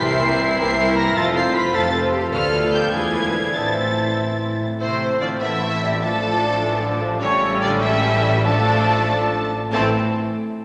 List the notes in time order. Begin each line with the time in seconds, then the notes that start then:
Already playing: C4 E4 C5 E5 C6 E6
0.00 C2 C3 E3 C4 E4 A#4 C5 C6 C7
0.11 G3
0.20 A#3 C4 G4 A#4
0.29 E4
0.39 C4 E4 A#4 C5
0.48 C5
0.58 C2 E3 A#3 C4 G4 A#4 C5 E5 C6 C7
0.68 A#5
0.77 C4 E4 A#4 C5
0.87 A#4
0.96 A#3 C4 E4 G4 A#4 A#5 A#6
1.07 G3
1.16 F1 F2 F3 C4 F4 A4 C5 A5 A6
1.26 C4
1.35 A3 C4 F4 A4 C5 F5 C6 C7
1.46 A4
1.55 C4 F4 B4 C5 B5 B6
1.65 F5
1.74 F1 F2 F3 A3 C4 A4 C5 F5 A5 A6
1.84 C6
1.92 C4 F4 C5 F5
2.03 C5
2.12 A3 C4 G4 A4 F5
2.23 C4
2.32 D2 D3 F3 A3 F4 A4 B4 F5 F6
2.43 A3
2.53 B3
2.63 F4
2.73 G4 A4 G5 G6
2.83 B4
2.93 E1 E2 E3 F3 D4 E4 G#4 B4 D5 F5 G#5 G#6
3.03 E4
3.13 B3 B4
3.23 F4
3.33 A4 D5
3.44 B4
3.54 A1 A2 E3 C4 E4 A4 C5 E5 A5 A6
3.65 E3
3.76 C4
3.87 E4
3.98 C5
4.08 E4
4.18 E5
4.29 C6
4.39 C5
4.50 E4
4.61 A2 C4
4.67 E3 C4
4.72 E4
4.76 A3 E4 A4 C5
4.80 A1 C3 A3 C4 C5 E5
5.20 D3 D4 F4 D5
5.40 E3 B3 E4 A4 B4 E5
5.62 A3
5.83 A2 G3
5.90 D4
5.95 F4
5.99 A4 D5 A5
6.03 F3 A3 D4 A4 D5
6.63 E3 D5
6.82 D3
7.02 A2 F3
7.07 C#4
7.12 G4
7.16 A4
7.21 A1 C#3 G3 C#4 E4 A4 C#5 E5
7.60 D3 D4 F4 D5
7.80 E3 A3 E4 G4 E5
8.02 A3
8.23 A2 G3
8.31 D4
8.36 F4
8.40 A4
8.45 F3 A3 D4 A4 D5 A5
9.09 F3 A4 D5
9.67 A2 A3
9.72 A1 E3 A3 C4 E4 A4 C5 A5
9.78 A4 E5